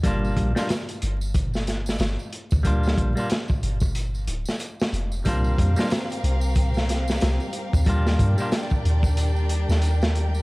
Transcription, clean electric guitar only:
X:1
M:4/4
L:1/16
Q:"Swing 16ths" 1/4=92
K:Gm
V:1 name="Clean electric guitar"
[G,B,DF]3 [G,B,DF] z12 | [G,B,DF]3 [G,B,DF] z12 | [G,B,DF]3 [G,B,DF] z12 | [G,B,DF]3 [G,B,DF] z12 |]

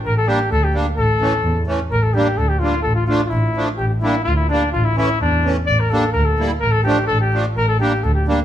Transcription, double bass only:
X:1
M:2/4
L:1/8
Q:1/4=128
K:none
V:1 name="Double bass" clef=bass
A,,, z D,, z | A,,, z E,, z | A,,, z D,, z | A,,, z A,,, z |
A,,, z D,, z | A,,, z E,, z | A,,, z D,, z | A,,, z A,,, z |
A,,, z D,, z |]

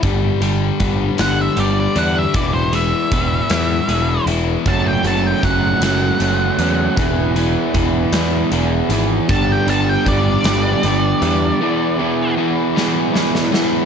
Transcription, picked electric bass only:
X:1
M:6/8
L:1/8
Q:3/8=52
K:Edor
V:1 name="Picked electric bass" clef=bass
G,,, G,,, G,,, G,,, G,,, E,, | E,,,2 E,,, E,, E,,, E,,, | F,,, F,,, F,,, F,,, F,,, E,, | E,,,2 E,,, E,, E,,, ^G,,, |
G,,, G,,, G,,, G,,, G,,, E,, | z6 |]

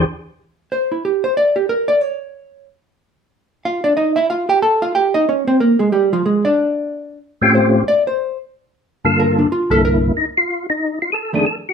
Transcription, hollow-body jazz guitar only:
X:1
M:4/4
L:1/16
Q:"Swing" 1/4=184
K:Fmix
V:1 name="Hollow-body jazz guitar"
z8 c2 =E2 G2 c2 | d2 G2 B2 d2 _d8 | z12 [Ff]2 [Dd]2 | [Ee]2 [=E=e]2 [Ff]2 [Gg]2 [Aa]2 [Ff]2 [Gg]2 [_E_e]2 |
[_D_d]2 [Cc]2 [B,B]2 [_A,_A]2 [G,G]2 [F,F]2 [A,A]2 [=D=d]2- | [Dd]8 z4 ^B4 | d2 c4 z8 z2 | B2 D2 F2 A2 B6- B z |
z8 z2 [F,,E,A,D]2 z4 |]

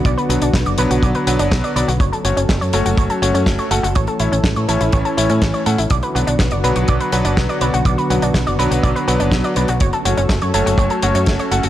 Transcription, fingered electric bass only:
X:1
M:4/4
L:1/16
Q:1/4=123
K:Bm
V:1 name="Fingered electric bass" clef=bass
B,,, z B,,, B,,, B,,, F,,, B,,, B,,, B,,, z B,,, F,,, B,,, z B,,, B,,, | F,,, z F,,, F,,, F,,, F,, F,,, F,,, F,,, z F,,, F,, F,,, z F,,, F,,, | A,,, z A,,, A,,, A,,, A,, A,,, A,,, A,,, z A,,, A,, A,,, z A,, A,,, | B,,, z B,,, B,,, B,,, F,,, B,,, B,,, B,,, z B,,, F,,, B,,, z B,,, B,,, |
B,,, z B,,, B,,, B,,, F,,, B,,, B,,, B,,, z B,,, F,,, B,,, z B,,, B,,, | F,,, z F,,, F,,, F,,, F,, F,,, F,,, F,,, z F,,, F,, F,,, z F,,, F,,, |]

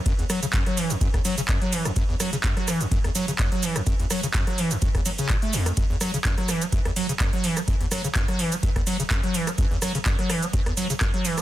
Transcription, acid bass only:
X:1
M:4/4
L:1/16
Q:"Swing 16ths" 1/4=126
K:F#m
V:1 name="Acid bass" clef=bass
F,, E,, F, C, F,, F, E, E,, F,, E,, F, C, F,, F, E, E,, | F,, E,, F, C, F,, F, E, E,, F,, E,, F, C, F,, F, E, E,, | F,, E,, F, C, F,, F, E, E,, F,, E,, F, C, A,, A, E,, F,, | F,, E,, F, C, F,, F, E, F, F,, E,, F, C, F,, F, E, F, |
F,, E,, F, C, F,, F, E, F, F,, E,, F, C, F,, F, E, F, | F,, E,, F, C, F,, F, E, F, F,, E,, F, C, F,, F, E, F, |]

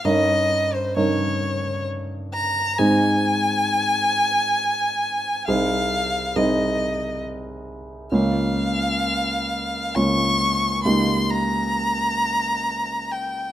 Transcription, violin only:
X:1
M:3/4
L:1/16
Q:1/4=67
K:Ab
V:1 name="Violin"
e3 c d4 z2 b2 | a12 | f4 e4 z4 | f8 d'4 |
c'2 b8 g2 |]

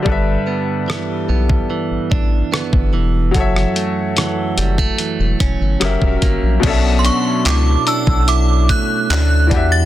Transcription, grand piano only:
X:1
M:4/4
L:1/8
Q:1/4=73
K:Bm
V:1 name="Grand piano"
[G,DABe]8 | [F,FAce]6 [F,CG^Ae]2 | [B,,F,CDAe]6- [B,,F,CDAe] [E,DFGe] |]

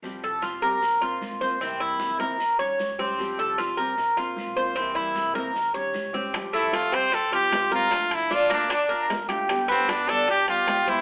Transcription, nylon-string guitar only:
X:1
M:4/4
L:1/8
Q:1/4=152
K:F
V:1 name="Nylon-string guitar"
[F,G,CG]3 [G,CG] z [B,CF]2 [B,CF] | [C,E,B,CE]3 [E,B,CE] z [G,_DG]2 [G,DG] | [F,G,CG]3 [G,CG] z [B,CF]2 [B,CF] | [C,E,B,CE]3 [E,B,CE] z [G,_DG]2 [G,DG] |
[F,G,CG]3 [G,CG] z [G,CG]2 [G,CG] | [F,A,DF]3 [A,DF] z [DF]2 [A,DF] | [D,G,=B,G]3 [G,B,G] z [G,B,G]2 [G,B,G] |]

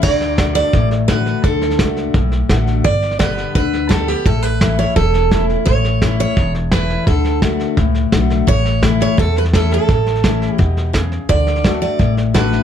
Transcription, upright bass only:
X:1
M:4/4
L:1/8
Q:1/4=171
K:D
V:1 name="Upright bass" clef=bass
D,,4 A,,,4 | D,,2 C,,2 B,,,2 A,,,2 | G,,,4 D,,4 | A,,,4 E,,,4 |
A,,,4 E,,,4 | D,,4 C,,2 B,,,2 | A,,,4 E,,4 | A,,,4 E,,4 |
D,,4 A,,,4 |]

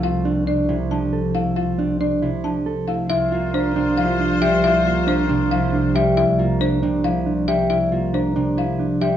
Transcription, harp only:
X:1
M:7/8
L:1/8
Q:1/4=137
K:Cmix
V:1 name="Harp" clef=bass
[C,F,A,C] C2 C, F,2 A,- | A, C2 C, F,2 A, | z B,2 C, F,2 G,- | G, B,2 C, F,2 G,- |
G, B,2 C, F,2 G,- | G, B,2 C, F,2 G, |]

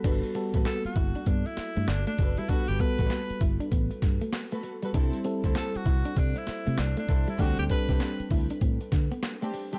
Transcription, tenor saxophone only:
X:1
M:4/4
L:1/16
Q:"Swing 16ths" 1/4=98
K:G
V:1 name="Tenor saxophone"
z4 A F3 D E3 D D2 E | F G B4 z8 z2 | z4 A F3 D E3 D D2 E | F G B4 z8 z2 |]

